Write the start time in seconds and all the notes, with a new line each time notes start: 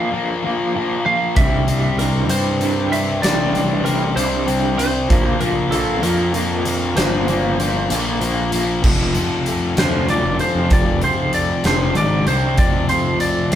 Already playing: A#2 F3 A#3 C4 F4 F5
0.12 A#2 F3 A#3 C4 F4
0.43 A#2 F3 A#3 C4 F4
0.74 A#2 F3 A#3 C4 F4
1.06 A#2 F3 A#3 F5
1.36 C2 C3 E3 G3 C4 D4 E4 E5, kick, closed hi-hat
1.68 C3 E3 G3 C4 D4 E4, closed hi-hat
1.99 C3 E3 G3 C4 D4 E4 A#4, closed hi-hat
2.29 G2 C3 E3 G3 C4 D4 E4 C5, closed hi-hat
2.61 C3 E3 G3 C4 D4 E4, closed hi-hat
2.91 C3 G3 C4 E5, closed hi-hat
3.22 A1 C3 E3 G3 C4 D4 E4 D5, snare, closed hi-hat
3.54 C3 E3 G3 C4 D4 E4, closed hi-hat
3.84 C3 E3 G3 C4 D4 E4 A#4, closed hi-hat
4.15 C2 C3 E3 G3 C4 D4 E4 C5, closed hi-hat
4.46 C3 E3 G3 C4 D4 E4, closed hi-hat
4.77 C3 G3 C4 C5, closed hi-hat
5.09 A#1 A#2 F3 A#3 C4 F4, kick, closed hi-hat
5.40 A#2 F3 A#3 C4 F4 A#4, closed hi-hat
5.71 A#2 F3 A#3 C4 F4 A4, closed hi-hat
6.02 F2 A#2 F3 A#3 C4 F4 A#4, closed hi-hat
6.33 A#2 F3 A#3 C4 F4, closed hi-hat
6.65 A#2 F3 A#3, closed hi-hat
6.96 G1 A#2 F3 A#3 C4 F4 C5, snare, closed hi-hat
7.27 A#2 F3 A#3 C4 F4, closed hi-hat
7.58 A#2 F3 A#3 C4 F4, closed hi-hat
7.90 A#1 A#2 F3 A#3 C4 F4, closed hi-hat
8.20 A#2 F3 A#3 C4 F4, closed hi-hat
8.52 A#2 F3 A#3, closed hi-hat
8.82 F1 F2 C3 F3, kick, crash
9.13 F2 C3 F3, closed hi-hat
9.46 A3, closed hi-hat
9.76 D2 F2 C3 F3 C5, snare, closed hi-hat
10.08 F2 C3 F3 A3 D5, closed hi-hat
10.24 F1
10.39 F2 C3 F3 C4 C5, closed hi-hat
10.55 F2
10.70 F1 F2 C3 F3 D5, kick, closed hi-hat
11.02 F2 C3 F3 C5, closed hi-hat
11.33 A3 D5, closed hi-hat
11.64 F1 F2 C3 F3 C5, snare, closed hi-hat
11.95 G#1 G#2 D#3 G#3 D5, closed hi-hat
12.26 C2 C3 G3 C4 C5, closed hi-hat
12.58 F2 C3 F3 D5, kick, closed hi-hat
12.89 F2 C3 F3 A3 C5, closed hi-hat
13.20 C4 D5, closed hi-hat
13.52 D2, closed hi-hat